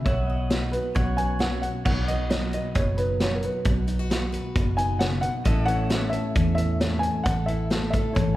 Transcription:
0.00 0.51 B3 medium
0.00 0.29 F#4 medium
0.05 0.77 B1 medium
0.05 0.93 B2 medium
0.05 0.94 B4 medium
0.05 0.69 C#5 medium
0.05 0.26 E5 medium
0.05 0.94 F#5 medium
0.05 kick loud
0.05 closed hi-hat medium
0.26 0.73 F#4 medium
0.26 0.95 D#5 medium
0.50 0.94 F#3 medium
0.50 0.93 D#4 medium
0.50 snare loud
0.50 closed hi-hat medium
0.72 0.93 F#4 medium
0.72 1.58 B4 medium
0.72 closed hi-hat medium
0.95 1.67 B1 medium
0.95 1.82 B2 medium
0.95 1.38 F#3 medium
0.95 1.38 C#4 medium
0.95 1.17 F#4 medium
0.95 1.85 C#5 medium
0.95 1.85 F#5 medium
0.95 kick loud
0.95 closed hi-hat medium
1.17 1.62 F#4 medium
1.17 1.41 G#5 medium
1.17 closed hi-hat medium
1.39 1.85 F#3 medium
1.39 1.82 C#4 soft
1.39 1.45 F#5 medium
1.39 snare loud
1.39 closed hi-hat medium
1.62 1.83 F#4 medium
1.62 1.67 F#5 medium
1.62 closed hi-hat medium
1.85 2.57 B1 medium
1.85 2.74 B2 medium
1.85 2.30 F#3 medium
1.85 2.97 D#4 medium
1.85 2.09 F#4 medium
1.85 2.53 B4 medium
1.85 2.10 C#5 medium
1.85 1.90 F#5 medium
1.85 5.43 F#5 medium
1.85 kick loud
1.85 crash medium
2.08 3.20 F#4 medium
2.08 2.52 D#5 medium
2.08 5.42 D#5 medium
2.08 closed hi-hat medium
2.30 3.19 F#3 medium
2.30 snare loud
2.30 closed hi-hat medium
2.53 3.63 B4 medium
2.53 2.77 D#5 medium
2.53 closed hi-hat medium
2.75 3.47 F#1 medium
2.75 3.63 B2 medium
2.75 2.99 C#5 medium
2.75 kick loud
2.75 closed hi-hat medium
2.97 3.63 D#4 medium
2.97 3.21 B4 medium
2.97 closed hi-hat medium
3.20 4.09 F#3 medium
3.20 3.63 F#4 medium
3.20 3.37 C#5 medium
3.20 snare loud
3.20 closed hi-hat medium
3.35 3.43 A#4 medium
3.42 4.30 B4 medium
3.42 closed hi-hat medium
3.65 4.37 B1 medium
3.65 4.54 B2 medium
3.65 3.87 F#4 medium
3.65 kick loud
3.65 closed hi-hat medium
3.87 3.99 D#4 medium
3.87 closed hi-hat medium
3.99 5.46 F#4 medium
4.10 5.45 F#3 medium
4.10 snare loud
4.10 closed hi-hat medium
4.32 5.43 B4 medium
4.32 closed hi-hat medium
4.55 5.27 F#1 medium
4.55 5.21 B2 medium
4.55 kick loud
4.55 closed hi-hat medium
4.77 5.43 D#4 medium
4.77 5.01 G#5 loud
4.77 closed hi-hat medium
4.99 5.23 C#3 medium
4.99 5.04 F#5 medium
4.99 snare loud
4.99 closed hi-hat medium
5.21 5.45 B2 medium
5.21 5.64 F#5 loud
5.21 closed hi-hat medium
5.45 6.17 A1 medium
5.45 7.23 A2 medium
5.45 5.89 A3 medium
5.45 6.58 C#4 medium
5.45 5.68 E4 medium
5.45 6.14 A4 medium
5.45 5.71 D#5 medium
5.45 8.36 E5 medium
5.45 kick loud
5.45 closed hi-hat medium
5.66 6.81 E4 medium
5.66 6.09 F#5 loud
5.66 closed hi-hat medium
5.71 8.36 C#5 medium
5.90 6.80 A3 medium
5.90 snare loud
5.90 closed hi-hat medium
6.10 6.53 E5 loud
6.10 closed hi-hat medium
6.14 7.24 A4 medium
6.35 7.07 E2 medium
6.35 7.23 E3 medium
6.35 kick loud
6.35 closed hi-hat medium
6.55 7.23 C#4 medium
6.55 6.98 E5 loud
6.55 closed hi-hat medium
6.81 7.23 A3 medium
6.81 7.24 E4 medium
6.81 snare loud
6.81 closed hi-hat medium
6.99 7.24 G#5 medium
6.99 closed hi-hat medium
7.24 7.97 A1 medium
7.24 8.36 A2 medium
7.24 7.92 A4 medium
7.24 7.48 F#5 loud
7.24 kick loud
7.24 closed hi-hat medium
7.46 8.36 E4 medium
7.46 7.89 E5 medium
7.46 closed hi-hat medium
7.70 8.36 A3 medium
7.70 snare loud
7.70 closed hi-hat medium
7.90 8.36 A4 medium
7.90 8.13 E5 medium
7.90 kick medium
7.90 closed hi-hat medium
8.13 8.36 G#1 medium
8.13 8.36 E3 medium
8.13 8.36 C#5 medium
8.13 kick loud
8.13 closed hi-hat medium

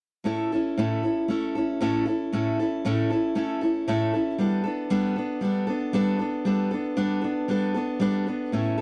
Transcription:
0.24 0.50 A2 medium
0.24 0.51 A3 medium
0.24 0.51 C#4 medium
0.24 0.51 E4 medium
0.24 0.51 A4 medium
0.52 0.78 C#4 soft
0.52 0.78 E4 medium
0.52 0.77 A4 soft
0.78 1.03 A2 medium
0.78 1.03 A3 medium
0.78 1.03 C#4 medium
0.78 1.03 E4 medium
0.78 1.02 A4 medium
1.03 1.29 C#4 soft
1.03 1.29 E4 soft
1.03 1.29 A4 soft
1.28 1.54 A3 medium
1.28 1.55 C#4 medium
1.28 1.55 E4 medium
1.28 1.54 A4 medium
1.55 1.80 C#4 soft
1.55 1.81 E4 soft
1.55 1.80 A4 medium
1.81 2.06 A2 medium
1.81 2.06 A3 medium
1.81 2.07 C#4 medium
1.81 2.06 E4 medium
1.81 2.04 A4 medium
2.05 2.32 C#4 soft
2.05 2.32 E4 soft
2.05 2.31 A4 soft
2.33 2.58 A2 medium
2.33 2.58 A3 medium
2.33 2.58 C#4 medium
2.33 2.59 E4 medium
2.33 2.58 A4 medium
2.60 2.85 C#4 soft
2.60 2.85 E4 soft
2.60 2.84 A4 medium
2.85 3.10 A2 medium
2.85 3.10 A3 medium
2.85 3.10 C#4 medium
2.85 3.11 E4 medium
2.85 3.09 A4 medium
3.10 3.34 C#4 soft
3.10 3.36 E4 soft
3.10 3.35 A4 medium
3.35 3.61 A3 medium
3.35 3.61 C#4 medium
3.35 3.62 E4 medium
3.35 3.60 A4 medium
3.61 3.87 C#4 soft
3.61 3.88 E4 soft
3.61 3.87 A4 soft
3.88 4.13 A2 medium
3.88 4.13 A3 medium
3.88 4.13 C#4 medium
3.88 4.14 E4 medium
3.88 4.12 A4 medium
4.14 4.39 C#4 soft
4.14 4.39 E4 soft
4.14 4.39 A4 soft
4.38 4.64 G3 medium
4.38 4.64 B3 medium
4.38 4.65 D4 medium
4.38 4.62 A4 medium
4.64 4.90 B3 soft
4.64 4.90 D4 soft
4.64 4.90 A4 medium
4.90 5.16 G3 medium
4.90 5.17 B3 medium
4.90 5.16 D4 medium
4.90 5.15 A4 medium
5.16 5.43 B3 soft
5.16 5.41 D4 soft
5.16 5.42 A4 medium
5.41 5.67 G3 medium
5.41 5.67 B3 medium
5.41 5.68 D4 medium
5.41 5.66 A4 medium
5.67 5.93 B3 soft
5.67 5.93 D4 soft
5.67 5.93 A4 medium
5.93 6.19 G3 medium
5.93 6.19 B3 medium
5.93 6.20 D4 medium
5.93 6.18 A4 medium
6.19 6.45 B3 soft
6.19 6.45 D4 soft
6.19 6.45 A4 soft
6.45 6.71 G3 medium
6.45 6.72 B3 medium
6.45 6.71 D4 medium
6.45 6.70 A4 medium
6.71 6.97 B3 soft
6.71 6.96 D4 soft
6.71 6.97 A4 medium
6.97 7.23 G3 medium
6.97 7.22 B3 medium
6.97 7.23 D4 medium
6.97 7.20 A4 medium
7.21 7.48 B3 soft
7.21 7.48 D4 soft
7.21 7.48 A4 soft
7.48 7.74 G3 medium
7.48 7.74 B3 medium
7.48 7.75 D4 medium
7.48 7.73 A4 medium
7.74 8.00 B3 medium
7.74 8.00 D4 soft
7.74 8.00 A4 medium
8.00 8.26 G3 medium
8.00 8.27 B3 medium
8.00 8.27 D4 medium
8.00 8.26 A4 medium
8.27 8.53 B3 soft
8.27 8.53 D4 soft
8.27 8.52 A4 soft
8.52 8.78 A2 medium
8.52 8.78 A3 medium
8.52 8.78 C#4 medium
8.52 8.79 E4 medium
8.52 8.77 A4 medium
8.78 8.81 A4 medium

